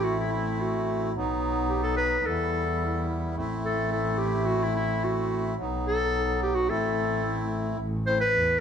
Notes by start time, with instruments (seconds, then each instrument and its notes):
Already playing: double bass A1, accordion A3 C4 E4
0.04 clarinet F#4
0.19 clarinet E4
0.33 clarinet E4
0.61 clarinet F#4
1.15 double bass B1, accordion F#3 B3 D#4
1.69 clarinet G4
1.83 clarinet A4
1.97 clarinet B4
2.25 double bass E2, accordion G3 B3 E4, clarinet A4
3.35 double bass A1, accordion A3 C4 E4
3.65 clarinet A4
3.92 clarinet A4
4.18 clarinet G4
4.46 clarinet F#4
4.63 clarinet E4
4.76 clarinet E4
5.04 clarinet F#4
5.58 double bass B1, accordion F#3 B3 D#4
5.88 clarinet A4
6.43 clarinet G4
6.55 clarinet F#4
6.67 double bass A1, accordion A3 C4 E4, clarinet A4
7.79 double bass A1
8.06 accordion A3 C4 E4, clarinet C5
8.21 clarinet B4
8.34 double bass E2